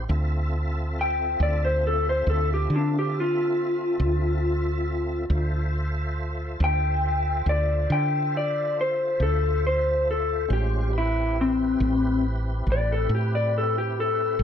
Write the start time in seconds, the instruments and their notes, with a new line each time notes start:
0.08 fretless electric bass D2, tonewheel organ C4 F4 A4 E5
1.01 clean electric guitar G5
1.40 fretless electric bass D2, clean electric guitar D5
1.65 clean electric guitar C5
1.87 clean electric guitar A4
2.09 clean electric guitar C5
2.27 fretless electric bass D2, clean electric guitar A4
2.54 clean electric guitar G4
2.70 fretless electric bass D3
2.76 clean electric guitar D4
2.99 clean electric guitar G4
3.20 clean electric guitar F4
4.00 fretless electric bass D2
5.30 fretless electric bass D2, tonewheel organ F4 A4 C5 E5
6.60 fretless electric bass D2, clean electric guitar G5
7.46 fretless electric bass D2, clean electric guitar D5
7.90 fretless electric bass D3, clean electric guitar G5
8.37 clean electric guitar D5
8.81 clean electric guitar C5
9.20 fretless electric bass D2, clean electric guitar A4
9.67 clean electric guitar C5
10.11 clean electric guitar A4
10.48 fretless electric bass A1, tonewheel organ G#3 C#4 F4 C5
10.53 clean electric guitar G4
10.93 tonewheel organ C4 E4 G4 B4
10.98 clean electric guitar E4
11.41 clean electric guitar C4
11.80 fretless electric bass A1
12.67 fretless electric bass A1
12.72 clean electric guitar D5
12.92 clean electric guitar A4
13.09 fretless electric bass A2
13.15 clean electric guitar G4
13.35 clean electric guitar D5
13.58 clean electric guitar A4
13.78 clean electric guitar G4
14.00 clean electric guitar A4
14.39 fretless electric bass A1